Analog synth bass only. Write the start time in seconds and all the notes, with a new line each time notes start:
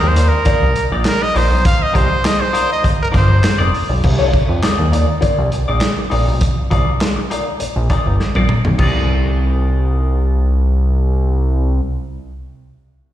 0.03 D#2
0.46 C2
0.63 C2
0.92 A#1
1.36 A#1
1.51 B1
1.95 C2
3.00 G1
3.14 G1
3.44 F1
3.60 F1
3.89 B1
4.04 C2
4.49 F2
4.63 D#2
4.79 D#2
5.23 C2
5.38 C2
5.69 A#1
6.12 A#1
6.28 B1
6.71 C2
7.61 A#1
7.76 A#1
8.06 G1
8.20 A#1
8.36 A#1
8.66 B1
8.79 C2